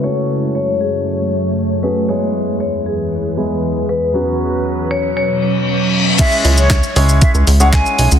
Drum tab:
CC |----------------|----------------|----------------|x---------------|
HH |----------------|----------------|----------------|x-o-x-o-x-o-x-o-|
SH |----------------|----------------|----------------|xxxxxxxxxxxxxxxx|
CP |----------------|----------------|----------------|----x-------x---|
SD |----------------|----------------|----------------|----o-------o---|
BD |----------------|----------------|----------------|o---o---o---o---|